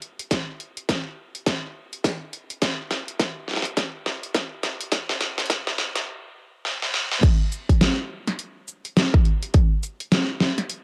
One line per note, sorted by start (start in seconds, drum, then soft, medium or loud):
0.02 closed hi-hat medium
0.19 closed hi-hat medium
0.31 kick medium
0.31 snare medium
0.31 closed hi-hat medium
0.60 closed hi-hat soft
0.77 closed hi-hat medium
0.89 kick medium
0.89 snare medium
0.89 closed hi-hat medium
1.35 closed hi-hat medium
1.46 kick medium
1.46 snare medium
1.46 closed hi-hat medium
1.93 closed hi-hat medium
2.04 kick loud
2.04 snare medium
2.04 closed hi-hat medium
2.33 closed hi-hat medium
2.50 closed hi-hat medium
2.62 kick loud
2.62 snare medium
2.62 closed hi-hat medium
2.91 snare medium
2.91 closed hi-hat soft
3.08 closed hi-hat medium
3.19 kick loud
3.19 snare medium
3.19 closed hi-hat medium
3.48 snare soft
3.51 snare soft
3.53 snare medium
3.56 snare medium
3.62 snare medium
3.62 closed hi-hat medium
3.77 kick medium
3.77 snare medium
3.77 closed hi-hat medium
4.06 snare medium
4.23 closed hi-hat medium
4.35 kick loud
4.35 snare medium
4.35 closed hi-hat medium
4.63 snare medium
4.63 closed hi-hat medium
4.81 closed hi-hat medium
4.92 kick loud
4.92 snare loud
4.92 closed hi-hat medium
5.09 snare medium
5.21 snare medium
5.21 closed hi-hat soft
5.38 snare medium
5.38 closed hi-hat soft
5.40 closed hi-hat soft
5.46 closed hi-hat soft
5.50 kick loud
5.50 snare loud
5.50 closed hi-hat medium
5.67 snare medium
5.78 snare loud
5.96 snare medium
5.96 closed hi-hat medium
6.65 snare medium
6.83 snare medium
6.94 snare medium
7.12 snare medium
7.23 kick loud
7.23 closed hi-hat medium
7.23 crash loud
7.52 closed hi-hat soft
7.52 shaker medium
7.69 kick medium
7.69 closed hi-hat medium
7.81 snare loud
7.81 closed hi-hat medium
8.28 snare soft
8.28 closed hi-hat medium
8.39 closed hi-hat medium
8.68 shaker medium
8.85 closed hi-hat medium
8.97 snare loud
8.97 closed hi-hat medium
9.14 kick loud
9.25 closed hi-hat medium
9.43 closed hi-hat medium
9.54 kick loud
9.54 closed hi-hat medium
9.83 closed hi-hat soft
9.83 shaker medium
10.00 closed hi-hat medium
10.12 snare loud
10.12 closed hi-hat medium
10.41 snare medium
10.58 snare soft
10.58 closed hi-hat medium
10.70 closed hi-hat medium